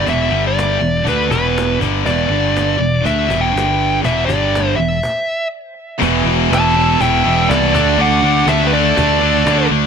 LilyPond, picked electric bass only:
\new Staff \with { instrumentName = "Picked electric bass" } { \clef bass \time 4/4 \key e \minor \tempo 4 = 122 e,,8 g,,4 e,,8 d,8 e,,4 g,,8 | e,,8 g,,4 e,,8 d,8 e,,8 g,,4 | e,,8 g,,4 e,,8 r2 | e,,8 e,,8 e,,4 e,,8 e,,8 c,8 d,8 |
d,8 d,8 d,4 d,8 d,8 d,8 d,8 | }